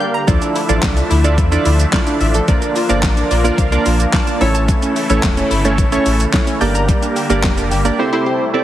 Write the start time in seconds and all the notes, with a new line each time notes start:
Already playing: D3 G3 A#3 D4 G4 A#4 D5
0.00 F5 G6
0.14 A#5
0.27 D2 F3 A3 D4 E4 F4 A4 D5, kick, closed hi-hat, shaker
0.42 D4, closed hi-hat, shaker
0.56 E4, open hi-hat, shaker
0.69 A1 F3 D4 E4 F4 A4 D5, closed hi-hat, shaker
0.83 C2, kick, snare, clap, closed hi-hat, shaker
0.97 D4, closed hi-hat, shaker
1.10 D2 E4, open hi-hat, shaker
1.24 D4 E4 F4 A4 D5, closed hi-hat, shaker
1.38 E2 F3, kick, closed hi-hat, shaker
1.51 D4 E4 F4 A4 D5, closed hi-hat, shaker
1.65 D2 E4, open hi-hat, shaker
1.80 closed hi-hat, shaker
1.93 A3 D4 E4 F4 A4 D5, kick, snare, clap, closed hi-hat, shaker
2.07 D4, closed hi-hat, shaker
2.21 A1 E5, open hi-hat, shaker
2.34 A4, closed hi-hat, shaker
2.48 A#1 F3 A#3 D4 F4 A#4 D5, kick, closed hi-hat, shaker
2.62 D4, closed hi-hat, shaker
2.76 F4, open hi-hat, shaker
2.89 G1 F3 A#3 D4 F4 A#4 D5, closed hi-hat, shaker
3.03 A1 A#3, kick, snare, clap, closed hi-hat, shaker
3.17 D4, closed hi-hat, shaker
3.31 A#1 F4 D5, open hi-hat, shaker
3.44 A#3 D4 F4 A#4 D5 F5, closed hi-hat, shaker
3.58 C2 F3 F5, kick, closed hi-hat, shaker
3.72 A#3 D4 F4 A#4 D5, closed hi-hat, shaker
3.86 A#1 F4, open hi-hat, shaker
4.00 closed hi-hat, shaker
4.13 A#3 D4 F4 A#4 D5 A5, kick, snare, clap, closed hi-hat, shaker
4.27 D4, closed hi-hat, shaker
4.41 A1 C#3 E3 A3 C#4 E4 A4 C#5 E6, open hi-hat, shaker
4.55 A5, closed hi-hat, shaker
4.68 E3, kick, closed hi-hat, shaker
4.82 C#4, closed hi-hat, shaker
4.96 E4, open hi-hat, shaker
5.10 A1 E3 A3 C#4 E4 A4 C#5, closed hi-hat, shaker
5.23 E1 A3, kick, snare, clap, closed hi-hat, shaker
5.37 C#4, closed hi-hat, shaker
5.51 G1 E4, open hi-hat, shaker
5.65 A3 C#4 E4 A4 C#5, closed hi-hat, shaker
5.78 A1 E3, kick, closed hi-hat, shaker
5.92 A3 C#4 E4 A4 C#5, closed hi-hat, shaker
6.06 A1 E4, open hi-hat, shaker
6.20 closed hi-hat, shaker
6.33 A3 C#4 E4 A4 C#5, kick, snare, clap, closed hi-hat, shaker
6.47 C#4, closed hi-hat, shaker
6.61 G1 D3 G3 A#3 D4 G4 A#4 D5 G6, open hi-hat, shaker
6.75 A#5, closed hi-hat, shaker
6.89 G3, kick, closed hi-hat, shaker
7.02 D4, closed hi-hat, shaker
7.16 G4, open hi-hat, shaker
7.29 G1 G3 A#3 D4 G4 A#4 D5, closed hi-hat, shaker
7.44 F1 A#3, kick, snare, clap, closed hi-hat, shaker
7.58 D4, closed hi-hat, shaker
7.71 G1 G4, open hi-hat, shaker
7.85 A#3 D4 G4 A#4 D5, closed hi-hat, shaker
7.99 C3 A3 C4 E4 G4 A4 C5
8.13 C4 E4 G4 A4 C5
8.26 G4
8.54 C4 E4 G4 A4 D5